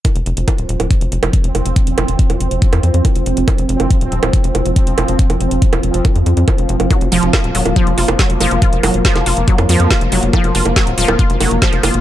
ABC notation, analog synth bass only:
X:1
M:4/4
L:1/16
Q:1/4=140
K:none
V:1 name="Analog synth bass" clef=bass
z F,,, F,,, F,,, z _E,,, E,,, E,,, z F,,, F,,, F,,, z F,,, F,,, F,,, | z F,,, F,,, F,,, z F,,, F,,, F,,, z F,, F,, F,, z F,,, F,,, F,,, | z F,,, F,,, F,,, z _E,,, E,,, E,,, z F,,, F,,, F,,, z F,,, F,,, F,,, | z F,,, F,,, F,,, z F,,, F,,, F,,, z F,, F,, F,, z F,,, F,,, F,,, |
z F,,, F,,, F,,, z _E,,, E,,, E,,, z F,,, F,,, F,,, z F,,, F,,, F,,, | z F,,, F,,, F,,, z F,,, F,,, F,,, z F,, F,, F,, z F,,, F,,, F,,, | z F,,, F,,, F,,, z _E,,, E,,, E,,, z F,,, F,,, F,,, z F,,, F,,, F,,, |]